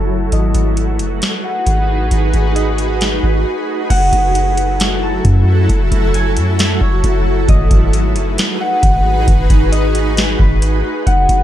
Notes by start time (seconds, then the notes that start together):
Already playing: F#1 F#3 A3 E4 F#4 A4 C#5 E5 G#5
0.32 G#1 D#4 F#4 G#4 B4 D#5, closed hi-hat
0.54 G#1, closed hi-hat
0.77 closed hi-hat
0.99 F#1, closed hi-hat
1.22 snare, closed hi-hat
1.44 F#5
1.66 G#1, closed hi-hat
2.00 A1
2.11 G#1, closed hi-hat
2.33 G#1, closed hi-hat
2.55 D#5, closed hi-hat
2.78 closed hi-hat
3.01 snare, closed hi-hat
3.23 G#1 B4
3.90 F#1 F#3 A3 E4 F#4 A4 F#5, kick, closed hi-hat, crash
4.13 F#1, kick, closed hi-hat
4.35 closed hi-hat
4.57 closed hi-hat
4.80 snare, closed hi-hat
5.03 A5
5.25 F#2, kick, closed hi-hat
5.69 F#1, kick, closed hi-hat
5.92 F#1, kick, closed hi-hat
6.14 G#5, closed hi-hat
6.37 F#2, closed hi-hat
6.59 E5, snare, closed hi-hat
6.81 F#1 C#5, kick
7.04 F#1, kick, closed hi-hat
7.48 G#1 D#4 F#4 G#4 B4 D#5, kick, closed hi-hat
7.71 G#1, kick, closed hi-hat
7.93 closed hi-hat
8.16 F#1, closed hi-hat
8.38 snare, closed hi-hat
8.60 F#5
8.83 G#1, kick, closed hi-hat
9.17 A1
9.28 G#1, kick, closed hi-hat
9.50 G#1, kick, closed hi-hat
9.72 D#5, closed hi-hat
9.95 closed hi-hat
10.17 snare, closed hi-hat
10.39 G#1 B4, kick
10.62 closed hi-hat
11.06 F#1 E3 F#3 A3 E4 F#4 A4 F#5, kick, closed hi-hat
11.29 F#1, kick, closed hi-hat